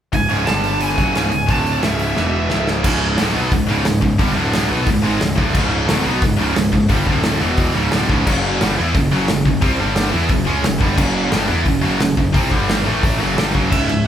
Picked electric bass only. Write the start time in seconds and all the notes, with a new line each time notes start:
0.14 C#1
0.31 C#1
0.48 G1
0.99 F#1
1.16 C#1
1.32 C#1
1.49 D1
1.83 C#1
2.17 E1
2.51 C#1
2.84 C#1
3.20 D1
3.35 B1
3.52 C#1
3.69 C#1
3.86 C#1
4.03 C#1
4.20 G1
4.37 D1
4.71 B1
4.87 C#1
5.04 G#1
5.21 C#1
5.38 D1
5.55 C#1
5.89 D1
6.06 B1
6.22 C#1
6.39 C#1
6.56 C#1
6.73 C#1
6.90 G1
7.07 D1
7.41 E1
7.76 C#1
7.92 D1
8.10 C#1
8.27 F#1
8.62 G1
8.79 E2
8.95 F#1
9.13 F#1
9.30 F#1
9.45 F#1
9.63 C2
9.80 G1
10.14 E2
10.29 F#1
10.48 C#2
10.66 F#1
10.81 G1
10.98 F#1
11.32 G1
11.49 E2
11.66 F#1
11.84 F#1
12.02 F#1
12.18 F#1
12.35 C2
12.52 G1
12.88 A1
13.22 F#1
13.39 G1
13.55 F#1
13.72 C#1
13.92 C#1